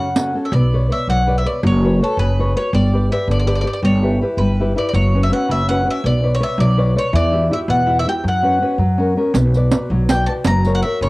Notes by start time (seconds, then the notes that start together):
Already playing: F#2 C#3 F#5
0.16 C#4 F#4 A4, riq
0.35 C#4 F#4 A4
0.45 E5
0.52 B1 B3 D5
0.74 B4 C#5 D5
0.90 B4 C#5 D5 E5
1.07 B1 F#3 F#5
1.27 B4 C#5 D5
1.38 E5
1.46 B4 C#5 D5
1.63 F#1 F#3 C#5
1.85 F#4 B4 C#5
2.01 F#4 A4 B4 C#5
2.17 F#1 C#3 B4
2.39 F#4 B4 C#5
2.56 F#4 B4 C#5
2.73 G1 G3 D5
2.93 G4 B4 D5
3.11 G4 B4 D5 E5
3.28 G1 D3 D5
3.39 D5
3.47 G4 B4 D5
3.55 D5
3.61 G4 B4 D5
3.65 D5
3.73 D5
3.83 G1 G3 C#5
4.03 E4 G4 B4
4.22 E4 G4 B4
4.37 G1 G3 B4
4.60 E4 G4 B4
4.76 E4 G4 B4 D5
4.89 D5
4.93 F#1 F#3 C#5
5.14 C#4 F#4 B4
5.23 E5
5.31 C#4 F#4 B4 F#5
5.48 F#1 C#3 E5
5.69 C#4 F#4 B4 F#5
5.86 F#4 B4
5.91 E5
6.04 B1 B3 D5
6.24 B4 C#5 D5
6.35 C#5
6.40 B4 C#5 D5 E5
6.58 B1 F#3 D5
6.77 B4 C#5 D5
6.95 B4 C#5 D5
7.13 E2 E3 D5
7.32 E4 F#4 G4
7.51 E4 F#4 G4 E5
7.68 E2 B2 F#5
7.86 E4 F#4 G4
7.99 E5
8.07 E4 F#4 G4 G5
8.24 F#2 F#3
8.28 F#5
8.42 C#4 F#4 B4
8.62 C#4 F#4 B4
8.78 F#2 F#3
8.98 C#4 F#4 A#4
9.17 C#4 F#4 A#4
9.34 B1 B3, riq
9.54 F#4 B4 D5, riq
9.72 F#4 B4 D5, riq
9.90 B1 F#3
10.09 F#4 B4 D5 G5, riq
10.26 F#4 B4 D5 A5
10.45 F#1 F#3 A#5, riq
10.65 F#4 A#4 C#5, riq
10.75 F#5
10.82 F#4 A#4 C#5 E5
11.01 F#1 C#3 C#5